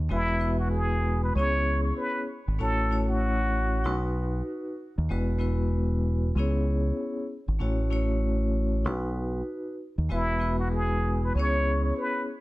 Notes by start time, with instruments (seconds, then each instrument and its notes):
0.09 fingered electric bass E1, vibraphone G#3 B3 E4 F#4 B4, muted trumpet E4
0.38 vibraphone G#3 B3 E4 F#4 B4
0.59 muted trumpet F#4
0.71 muted trumpet G#4
1.23 muted trumpet B4
1.35 fingered electric bass C#2, vibraphone B3 C#4 E4 G#4, muted trumpet C#5
1.39 vibraphone C#5
1.84 muted trumpet C#5
1.97 muted trumpet B4
2.48 fingered electric bass G#1
2.59 fingered electric bass A1, vibraphone A3 C#4 E4 F#4 C#5, muted trumpet A4
2.90 vibraphone A3 C#4 E4 F#4 C#5
3.09 muted trumpet F#4
3.84 fingered electric bass B1, vibraphone D#4 F#4 B4
4.98 fingered electric bass D#2
5.09 fingered electric bass E1, vibraphone G#3 B3 E4 F#4 B4
5.39 vibraphone G#3 B3 E4 F#4 B4
6.35 fingered electric bass C#2, vibraphone B3 C#4 E4 G#4
6.39 vibraphone C#5
7.48 fingered electric bass G#1
7.59 fingered electric bass A1, vibraphone A3 C#4 E4 F#4 C#5
7.90 vibraphone A3 C#4 E4 F#4 C#5
8.85 fingered electric bass B1, vibraphone D#4 F#4 B4
9.98 fingered electric bass D#2
10.09 fingered electric bass E1, vibraphone G#3 B3 E4 F#4 B4, muted trumpet E4
10.39 vibraphone G#3 B3 E4 F#4 B4
10.59 muted trumpet F#4
10.72 muted trumpet G#4
11.24 muted trumpet B4
11.35 fingered electric bass C#2, vibraphone B3 C#4 E4 G#4, muted trumpet C#5
11.40 vibraphone C#5
11.84 muted trumpet C#5
11.97 muted trumpet B4